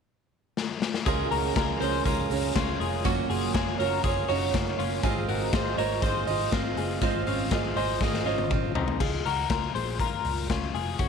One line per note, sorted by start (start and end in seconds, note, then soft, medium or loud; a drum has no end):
0.57 snare medium
0.82 snare medium
0.94 snare medium
1.06 1.27 C#2 loud
1.06 1.56 C#3 medium
1.06 3.04 F3 medium
1.06 1.54 G#3 medium
1.06 1.56 C#4 medium
1.06 1.32 F4 medium
1.06 1.31 G#4 medium
1.06 1.56 G#4 medium
1.06 1.58 A#4 loud
1.06 kick loud
1.06 closed hi-hat medium
1.31 1.51 C#2 medium
1.31 1.56 F#4 medium
1.31 1.55 A#4 medium
1.31 open hi-hat medium
1.55 1.76 C#2 medium
1.55 1.80 G#3 medium
1.55 1.81 C#4 medium
1.55 1.81 F4 medium
1.55 1.80 G#4 medium
1.55 1.80 A#4 medium
1.55 1.79 A#4 medium
1.55 kick loud
1.55 snare loud
1.55 closed hi-hat medium
1.80 2.01 C#2 medium
1.80 2.04 G#3 soft
1.80 2.05 C#4 medium
1.80 2.06 G#4 soft
1.80 2.06 G#4 medium
1.80 2.05 A#4 medium
1.80 2.05 C5 medium
1.80 open hi-hat medium
2.05 2.26 C#2 medium
2.05 2.30 G#3 medium
2.05 2.31 C#4 medium
2.05 2.53 F4 medium
2.05 2.30 G#4 medium
2.05 2.52 A#4 medium
2.05 2.29 A#4 medium
2.05 kick medium
2.05 closed hi-hat medium
2.30 2.51 C#2 medium
2.30 2.53 G#3 soft
2.30 2.54 C#4 soft
2.30 2.55 G#4 medium
2.30 2.55 A#4 medium
2.30 open hi-hat medium
2.54 2.76 C#2 medium
2.54 3.04 G#3 medium
2.54 3.04 C#4 medium
2.54 2.81 C#4 medium
2.54 2.80 F4 medium
2.54 3.05 G#4 medium
2.54 3.06 A#4 medium
2.54 kick loud
2.54 snare loud
2.54 closed hi-hat medium
2.80 3.00 F1 medium
2.80 3.05 F4 soft
2.80 3.05 G#4 medium
2.80 open hi-hat medium
3.04 3.25 F#1 loud
3.04 3.54 F#3 medium
3.04 3.53 A#3 medium
3.04 3.54 C#4 medium
3.04 3.30 C#4 medium
3.04 3.56 F4 medium
3.04 3.30 F#4 medium
3.04 3.55 C#5 medium
3.04 kick loud
3.04 closed hi-hat medium
3.30 3.50 F#1 medium
3.30 3.54 F4 medium
3.30 3.53 G#4 medium
3.30 open hi-hat medium
3.54 3.75 F#1 loud
3.54 3.79 A#3 medium
3.54 3.80 C#4 medium
3.54 3.80 F4 medium
3.54 3.79 F4 medium
3.54 3.79 G#4 medium
3.54 3.77 C#5 medium
3.54 kick loud
3.54 snare loud
3.54 closed hi-hat medium
3.78 4.00 F#1 loud
3.78 4.03 C#4 soft
3.78 4.05 F4 soft
3.78 4.05 F#4 medium
3.78 4.04 A#4 medium
3.78 4.03 C#5 soft
3.78 open hi-hat medium
4.03 4.24 F#1 medium
4.03 4.28 A#3 medium
4.03 4.29 C#4 medium
4.03 4.28 F4 medium
4.03 4.29 F4 medium
4.03 4.29 G#4 medium
4.03 4.27 C#5 medium
4.03 kick medium
4.03 closed hi-hat medium
4.28 4.50 F#1 medium
4.28 4.53 C#4 soft
4.28 4.76 D#4 medium
4.28 4.54 F4 soft
4.28 4.75 F#4 medium
4.28 4.53 C#5 medium
4.28 open hi-hat medium
4.53 4.74 F#1 medium
4.53 5.03 A#3 medium
4.53 5.04 C#4 medium
4.53 5.04 F4 medium
4.53 5.05 C#5 medium
4.53 kick medium
4.53 snare medium
4.53 closed hi-hat medium
4.79 4.99 F#1 medium
4.79 5.04 C#4 soft
4.79 5.03 F4 medium
4.79 open hi-hat medium
5.03 5.24 G#1 medium
5.03 7.01 G#3 medium
5.03 5.52 C4 medium
5.03 5.53 F4 medium
5.03 5.29 F4 medium
5.03 5.28 G#4 medium
5.03 5.54 C5 medium
5.03 5.55 D#5 medium
5.03 kick loud
5.03 closed hi-hat medium
5.28 5.49 G#1 medium
5.28 5.54 F#4 medium
5.28 5.53 A#4 medium
5.28 open hi-hat medium
5.53 5.73 G#1 loud
5.53 5.78 C4 medium
5.53 5.78 F4 medium
5.53 5.78 G#4 soft
5.53 5.78 C5 medium
5.53 5.76 D#5 medium
5.53 kick loud
5.53 snare loud
5.53 closed hi-hat medium
5.78 5.98 G#1 loud
5.78 6.02 F4 soft
5.78 6.03 A#4 medium
5.78 6.03 C5 medium
5.78 6.03 C#5 medium
5.78 6.03 D#5 medium
5.78 open hi-hat medium
6.02 6.23 G#1 medium
6.02 6.27 C4 medium
6.02 6.28 F4 medium
6.02 6.50 G#4 medium
6.02 6.50 C5 medium
6.02 6.28 C5 medium
6.02 6.26 D#5 medium
6.02 kick loud
6.02 closed hi-hat medium
6.27 6.48 G#1 medium
6.27 6.51 F4 soft
6.27 6.53 C5 soft
6.27 6.52 D#5 medium
6.27 open hi-hat medium
6.51 6.73 G#1 medium
6.51 7.01 C4 medium
6.51 6.78 C4 medium
6.51 7.02 F4 medium
6.51 6.77 F4 medium
6.51 7.02 C5 medium
6.51 7.03 D#5 medium
6.51 kick loud
6.51 snare loud
6.51 closed hi-hat medium
6.77 6.97 F#1 medium
6.77 7.02 F4 soft
6.77 7.02 G#4 medium
6.77 open hi-hat medium
7.01 7.22 G#1 loud
7.01 9.52 G#3 medium
7.01 7.50 C4 medium
7.01 7.27 C4 medium
7.01 7.52 F4 medium
7.01 7.26 F4 medium
7.01 7.52 C5 medium
7.01 7.52 D#5 medium
7.01 kick loud
7.01 closed hi-hat medium
7.27 7.47 G#1 medium
7.27 7.52 C#4 medium
7.27 7.51 F4 medium
7.27 open hi-hat medium
7.51 7.72 G#1 loud
7.51 7.76 C4 medium
7.51 7.77 F4 medium
7.51 7.76 G#4 medium
7.51 7.76 C5 medium
7.51 7.75 D#5 medium
7.51 kick loud
7.51 snare loud
7.51 closed hi-hat medium
7.76 7.97 G#1 medium
7.76 8.00 F4 soft
7.76 8.00 G#4 medium
7.76 8.01 C5 medium
7.76 8.01 C5 soft
7.76 8.01 D#5 medium
7.76 open hi-hat medium
8.00 8.21 G#1 medium
8.00 8.26 C4 medium
8.00 8.26 F4 medium
8.00 8.25 F4 medium
8.00 8.26 G#4 medium
8.00 8.26 C5 medium
8.00 8.24 D#5 medium
8.00 kick medium
8.00 snare medium
8.14 snare soft
8.25 8.46 G#1 medium
8.25 8.73 C#4 medium
8.25 8.73 F4 medium
8.25 8.51 F4 soft
8.25 8.51 C5 medium
8.25 8.51 D#5 medium
8.38 high tom medium
8.51 8.71 G#1 medium
8.51 9.00 C4 medium
8.51 9.52 F4 medium
8.51 9.01 C5 medium
8.51 9.02 D#5 medium
8.51 kick medium
8.51 mid tom medium
8.75 8.96 C2 medium
8.75 9.01 C4 medium
8.75 9.00 D#4 medium
8.75 floor tom medium
8.88 floor tom medium
9.00 9.21 C#2 loud
9.00 9.26 F4 medium
9.00 9.25 G#4 medium
9.00 kick loud
9.00 crash medium
9.25 9.46 C#2 medium
9.25 9.51 F#4 medium
9.25 9.49 A#4 medium
9.25 open hi-hat medium
9.49 9.71 C#2 medium
9.49 9.75 F4 medium
9.49 9.74 A#4 medium
9.49 kick loud
9.49 snare loud
9.49 closed hi-hat medium
9.75 10.05 A#1 medium
9.75 10.00 G#4 medium
9.75 10.00 C5 medium
9.75 open hi-hat medium
10.00 10.47 F4 medium
10.00 10.47 A#4 medium
10.00 kick medium
10.00 closed hi-hat medium
10.25 10.45 C#2 medium
10.25 open hi-hat medium
10.50 10.70 C#2 medium
10.50 10.75 C#4 soft
10.50 10.74 F4 medium
10.50 kick medium
10.50 snare loud
10.50 closed hi-hat medium
10.75 10.95 F1 medium
10.75 10.99 F4 soft
10.75 10.99 G#4 medium
10.75 open hi-hat medium
10.99 11.09 F#1 medium
10.99 11.09 C#4 medium
10.99 11.09 F#4 medium
10.99 kick loud
10.99 closed hi-hat medium